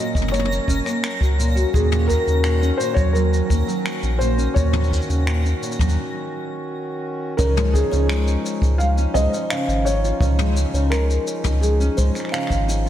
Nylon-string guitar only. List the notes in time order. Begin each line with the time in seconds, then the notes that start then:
Already playing: A#2
0.15 A#3
0.33 A#3
0.68 C#4
0.86 A#3
1.21 F#4
1.38 A#2
1.56 F#4
1.73 A#2
2.08 D#3
2.26 C#3
2.44 A#2
2.61 C#4
2.79 A#2
2.96 F#3
3.14 F#3
3.49 A#3
3.67 F#3
4.02 C#4
4.20 A#2
4.37 C#4
4.56 A#2
4.91 D#3
5.08 C#3
5.26 A#2
5.44 C#4
5.61 A#2
5.79 F#3
7.38 C#3
7.56 G#3
7.74 C#3
7.91 C#3
8.09 G#3
8.62 D#4
8.80 G#3
8.98 C#4
9.16 G#3
9.34 C#4
9.52 C#3
9.86 D#4
10.04 F4
10.21 C#3
10.39 G#3
10.57 C#3
10.74 C#3
10.92 G#3
11.45 D#4
11.63 G#3
11.80 C#4
11.98 G#3
12.15 C#4
12.33 C#3
12.68 D#4
12.86 F4